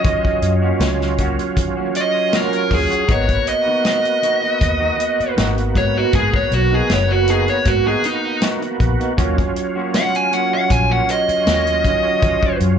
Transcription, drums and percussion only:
0.04 kick, closed hi-hat
0.25 kick
0.42 closed hi-hat
0.80 snare, closed hi-hat
1.01 snare
1.18 kick, closed hi-hat
1.39 closed hi-hat
1.57 kick, closed hi-hat
1.95 closed hi-hat
2.33 snare, closed hi-hat
2.53 closed hi-hat
2.71 kick, open hi-hat
2.91 closed hi-hat
3.09 kick, closed hi-hat
3.29 kick, closed hi-hat
3.47 closed hi-hat
3.85 snare, closed hi-hat
4.05 closed hi-hat
4.23 closed hi-hat
4.61 kick, closed hi-hat
5.00 closed hi-hat
5.20 closed hi-hat
5.38 snare, closed hi-hat
5.58 closed hi-hat
5.75 kick, closed hi-hat
6.13 kick, closed hi-hat
6.34 kick
6.52 closed hi-hat
6.90 snare, closed hi-hat
7.28 closed hi-hat
7.48 closed hi-hat
7.65 kick, closed hi-hat
8.04 closed hi-hat
8.42 snare, closed hi-hat
8.62 closed hi-hat
8.80 kick, closed hi-hat
9.01 closed hi-hat
9.18 kick, closed hi-hat
9.38 kick, closed hi-hat
9.56 closed hi-hat
9.94 snare, closed hi-hat
10.15 closed hi-hat
10.33 closed hi-hat
10.70 kick, closed hi-hat
11.09 closed hi-hat
11.29 closed hi-hat
11.47 snare, closed hi-hat
11.67 closed hi-hat
11.85 kick, closed hi-hat
12.22 kick, closed hi-hat
12.43 kick
12.60 closed hi-hat

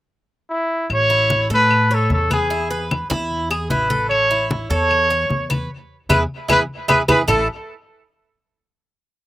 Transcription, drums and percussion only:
0.90 high conga, claves
1.10 high conga
1.30 high conga
1.50 high conga
1.71 high conga, claves
1.90 high conga
2.10 high conga
2.31 high conga, claves
2.51 high conga
2.71 high conga
2.91 high conga, claves
3.11 high conga
3.31 high conga
3.51 high conga, claves
3.70 high conga
3.90 high conga
4.11 high conga, claves
4.31 high conga
4.51 high conga
4.71 high conga
4.91 high conga, claves
5.11 high conga
5.30 high conga
5.51 high conga, claves
6.10 high conga, claves
6.50 high conga, claves
6.89 high conga, claves
7.09 high conga, claves
7.28 low conga, claves

